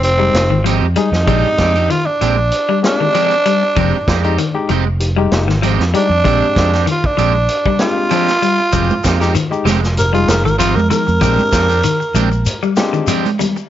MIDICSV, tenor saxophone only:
0, 0, Header, 1, 2, 480
1, 0, Start_track
1, 0, Tempo, 621762
1, 987, Time_signature, 4, 2, 24, 8
1, 10569, End_track
2, 0, Start_track
2, 0, Title_t, "Tenor saxophone"
2, 0, Program_c, 0, 66
2, 25, Note_on_c, 0, 60, 99
2, 492, Note_off_c, 0, 60, 0
2, 744, Note_on_c, 0, 63, 99
2, 1469, Note_on_c, 0, 65, 87
2, 1481, Note_off_c, 0, 63, 0
2, 1586, Note_on_c, 0, 62, 82
2, 1597, Note_off_c, 0, 65, 0
2, 2165, Note_off_c, 0, 62, 0
2, 2206, Note_on_c, 0, 62, 113
2, 3606, Note_off_c, 0, 62, 0
2, 4604, Note_on_c, 0, 62, 108
2, 5294, Note_off_c, 0, 62, 0
2, 5334, Note_on_c, 0, 65, 81
2, 5448, Note_on_c, 0, 62, 90
2, 5460, Note_off_c, 0, 65, 0
2, 6016, Note_off_c, 0, 62, 0
2, 6028, Note_on_c, 0, 65, 106
2, 7437, Note_off_c, 0, 65, 0
2, 7706, Note_on_c, 0, 70, 88
2, 7820, Note_off_c, 0, 70, 0
2, 7825, Note_on_c, 0, 65, 91
2, 7942, Note_on_c, 0, 70, 82
2, 7954, Note_off_c, 0, 65, 0
2, 8059, Note_off_c, 0, 70, 0
2, 8064, Note_on_c, 0, 70, 89
2, 8167, Note_off_c, 0, 70, 0
2, 8172, Note_on_c, 0, 65, 91
2, 8303, Note_on_c, 0, 70, 87
2, 8315, Note_off_c, 0, 65, 0
2, 8406, Note_off_c, 0, 70, 0
2, 8411, Note_on_c, 0, 70, 104
2, 9830, Note_off_c, 0, 70, 0
2, 10569, End_track
0, 0, End_of_file